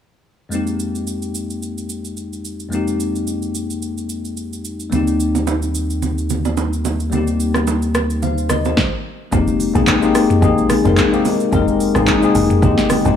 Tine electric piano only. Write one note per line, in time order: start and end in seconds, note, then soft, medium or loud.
0.49 2.67 F2 medium
0.49 2.67 G#3 medium
0.49 2.68 A#3 medium
0.49 2.68 C4 medium
0.54 2.69 D#4 medium
0.54 2.70 G4 medium
2.69 4.87 F2 medium
2.69 4.87 G#3 medium
2.69 4.88 A#3 medium
2.69 4.89 C4 medium
2.74 4.89 D#4 medium
2.74 4.90 G4 medium
4.90 7.07 G3 medium
4.90 7.08 A#3 medium
4.90 7.09 C4 medium
4.94 7.09 D#4 medium
4.94 7.10 G4 medium
7.10 8.73 G3 medium
7.10 8.74 A#3 medium
7.10 8.74 C4 medium
7.14 8.75 D#4 medium
7.14 8.22 G4 medium
8.23 8.49 C5 medium
8.23 8.49 F5 medium
8.50 8.65 A#4 medium
8.50 8.65 D#5 medium
8.65 8.92 G4 medium
8.65 8.91 C5 medium
9.31 9.66 G#3 medium
9.31 9.66 A#3 medium
9.31 9.66 C4 medium
9.31 9.67 D#4 medium
9.31 9.67 G4 medium
9.74 9.96 G#3 medium
9.74 9.96 A#3 medium
9.74 9.97 C4 medium
9.74 9.97 D#4 medium
9.74 9.97 G#4 loud
10.01 10.35 G#3 medium
10.01 10.35 A#3 medium
10.01 10.35 C4 medium
10.01 10.36 D#4 medium
10.01 10.36 G4 loud
10.42 10.76 G#3 medium
10.42 10.76 A#3 medium
10.42 10.76 C4 medium
10.42 10.77 D#4 medium
10.42 10.77 G#4 loud
10.84 11.06 G#3 medium
10.84 11.07 A#3 medium
10.84 11.07 C4 medium
10.84 11.07 D#4 medium
10.84 11.08 A#4 medium
11.12 11.45 G#3 medium
11.12 11.45 A#3 medium
11.12 11.45 C4 medium
11.12 11.46 D#4 medium
11.12 11.46 G4 loud
11.52 11.86 G#3 medium
11.52 11.86 A#3 medium
11.52 11.87 C4 medium
11.52 11.87 D#4 medium
11.52 11.87 A#4 loud
11.94 12.16 G#3 medium
11.94 12.17 A#3 medium
11.94 12.17 C4 medium
11.94 12.17 D#4 medium
11.94 12.18 G#4 loud
12.22 12.55 G#3 medium
12.22 12.55 A#3 medium
12.22 12.56 C4 medium
12.22 12.56 D#4 medium
12.22 12.56 G#4 loud
12.62 12.96 G#3 medium
12.62 12.96 A#3 medium
12.62 12.97 C4 medium
12.62 12.97 D#4 medium
12.62 12.97 G4 loud
13.04 13.16 G#3 medium
13.04 13.16 A#3 medium
13.04 13.16 C4 medium
13.04 13.16 D#4 medium
13.04 13.16 G4 medium